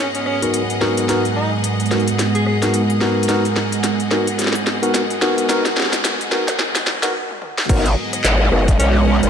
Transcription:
Already playing: G#3 B3 F#4 G#4 B4 D#5 F#5
0.15 C#4, closed hi-hat
0.26 C#4, cross-stick
0.42 B3 D#4 F#4 A#4, closed hi-hat
0.54 closed hi-hat
0.70 closed hi-hat
0.81 B3 D#4 F#4 A#4, snare
0.97 closed hi-hat
1.09 B3 D#4 F#4 A#4, snare, closed hi-hat
1.25 closed hi-hat
1.36 D#4
1.64 closed hi-hat
1.80 closed hi-hat
1.86 closed hi-hat
1.91 B3 D#4 F#4 A#4, cross-stick, snare, closed hi-hat
2.00 closed hi-hat
2.08 closed hi-hat
2.19 snare, closed hi-hat
2.35 G#4, closed hi-hat
2.46 G#4, cross-stick
2.62 B3 D#4 F#4 A#4, snare, closed hi-hat
2.74 closed hi-hat
2.90 closed hi-hat
3.01 B3 D#4 F#4 A#4, snare
3.23 closed hi-hat
3.28 B3 D#4 F#4 A#4, snare, closed hi-hat
3.45 closed hi-hat
3.56 snare
3.72 closed hi-hat
3.84 snare, closed hi-hat
4.00 closed hi-hat
4.11 B3 D#4 F#4 A#4, snare
4.27 closed hi-hat
4.39 snare, closed hi-hat
4.42 snare
4.44 snare
4.47 snare
4.53 snare, closed hi-hat
4.67 snare
4.83 B3 D#4 F#4 A#4, closed hi-hat
4.94 snare, closed hi-hat
5.10 closed hi-hat
5.22 B3 D#4 F#4 A#4, snare
5.38 closed hi-hat
5.49 B3 D#4 F#4 A#4, snare, closed hi-hat
5.65 snare, closed hi-hat
5.77 snare
5.80 snare
5.82 snare
5.85 snare
5.90 snare
5.93 snare, closed hi-hat
6.05 snare, closed hi-hat
6.21 closed hi-hat
6.32 B3 D#4 F#4 A#4, snare
6.48 snare, closed hi-hat
6.59 snare
6.75 snare, closed hi-hat
6.87 snare
7.03 B3 D#4 F#4 A#4, snare, closed hi-hat
7.30 high tom
7.42 mid tom
7.58 snare
7.69 G#1 G#3 B3 D#4 F#4 A#4 B4, kick, closed hi-hat, crash
7.78 D#5
7.86 closed hi-hat
8.01 G#4
8.06 F#5
8.13 cross-stick, closed hi-hat
8.24 G#1, clap, closed hi-hat
8.52 F#1 B3 D#4 F#4 A#4, cross-stick
8.68 kick, closed hi-hat
8.79 B1 C#4, closed hi-hat
8.95 C#4
9.06 C#4
9.23 G#1 B3 D#4 F#4 A#4, closed hi-hat

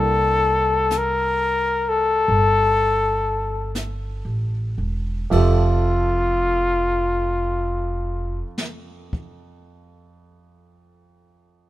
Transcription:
Already playing: C2 G3 A#3 D4 E4 G4 A4
0.91 brush sweep, snare, hi-hat pedal
0.98 A#4
1.89 A4
2.28 G1, brush sweep
3.75 brush sweep, snare, hi-hat pedal
4.25 A1
4.78 E1
5.30 F1 F2 F3 G4 A4 E5, kick, ride
5.36 F4
8.58 snare
9.13 kick

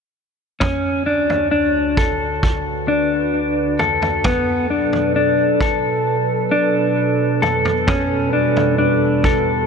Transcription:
0.60 D2 D3 C#4 F#4 C#5, kick, floor tom
1.06 D4
1.30 floor tom
1.51 D4
1.97 A4, kick
2.43 B4, kick
2.88 D4
3.79 A4, floor tom
4.02 floor tom
4.24 B2 F#3 B3 A4 B4, kick, floor tom
4.70 D4
4.93 floor tom
5.16 D4
5.61 A4, kick
6.51 D4
7.42 A4, floor tom
7.65 floor tom
7.87 E2 G3 C#4 F#4, kick, floor tom
8.33 D4
8.57 floor tom
8.78 D4
9.24 A4, kick

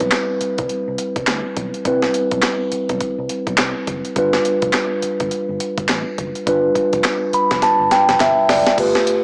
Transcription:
Already playing: G3 C4 E4 B4
0.00 B1, kick, closed hi-hat
0.11 snare, clap, closed hi-hat
0.41 muted fingered electric bass stroke, closed hi-hat
0.58 C2, kick, closed hi-hat
0.69 closed hi-hat
0.88 C2
0.98 closed hi-hat
1.16 C2, kick, closed hi-hat
1.27 D2, snare, clap, closed hi-hat
1.57 B1, kick, closed hi-hat
1.74 closed hi-hat
1.85 C2 G3 C4 E4 B4, kick, closed hi-hat
2.02 snare
2.14 closed hi-hat
2.31 B1, kick, closed hi-hat
2.42 snare, clap, closed hi-hat
2.72 muted fingered electric bass stroke, closed hi-hat
2.89 B1, kick, closed hi-hat
3.00 kick, closed hi-hat
3.18 C2
3.29 closed hi-hat
3.47 B1, kick, closed hi-hat
3.57 C2, snare, clap, closed hi-hat
3.87 F#1, kick, closed hi-hat
4.05 closed hi-hat
4.16 G1 G3 D4 F4 B4, kick, closed hi-hat
4.33 snare
4.45 closed hi-hat
4.62 F1, kick, closed hi-hat
4.73 snare, clap, closed hi-hat
5.02 muted fingered electric bass stroke, closed hi-hat
5.20 G1, kick, closed hi-hat
5.31 closed hi-hat
5.49 G1
5.60 closed hi-hat
5.78 G1, kick, closed hi-hat
5.88 A1, snare, clap, closed hi-hat
6.18 F#1, kick, closed hi-hat
6.35 closed hi-hat
6.46 G1 G3 D4 F4 B4, kick, closed hi-hat
6.75 kick, closed hi-hat
6.93 F1, kick, closed hi-hat
7.04 snare, clap, closed hi-hat
7.33 B5, muted fingered electric bass stroke, closed hi-hat
7.51 F1, kick, snare, closed hi-hat
7.62 A5, kick, snare, closed hi-hat
7.79 G1
7.91 G5, snare, closed hi-hat
8.08 F1, snare, closed hi-hat
8.20 G1 E5, snare, clap, closed hi-hat
8.49 F#1 D5, snare, open hi-hat
8.67 snare, closed hi-hat
8.77 G1 A3 F4 G4 B4, kick, closed hi-hat, crash
8.95 snare
9.07 closed hi-hat, tambourine

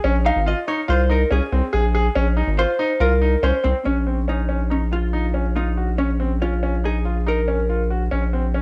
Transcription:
0.04 A#1 C#4
0.25 D#4 F5
0.36 G#1
0.46 F4 D#5
0.68 D#4 C#5
0.88 C2 F4 C5
1.10 D#4 A#4
1.31 C2 C#4 G#4
1.52 C2 C4
1.73 A#1 G#4
1.95 G#4
2.15 A#1 C#4
2.37 D#4
2.47 G#1
2.58 F4 C5
2.79 D#4
3.00 C2 F4 A#4
3.21 D#4
3.43 C2 C#4 C5
3.64 C2 C4
3.85 A#1 C#4
4.07 C4
4.28 C#4 D#4
4.49 C#4
4.70 C#4 D#4
4.92 F4
5.13 D#4
5.34 C#4
5.55 D#4 F4
5.77 F#4
5.98 C#4
6.20 C4
6.42 C#4 F4
6.63 C#4
6.84 D#4 G#4
7.05 F4
7.26 D#4 A#4
7.48 C#4
7.69 F4
7.90 F#4
8.11 A#1 C#4
8.33 C4
8.54 C#4

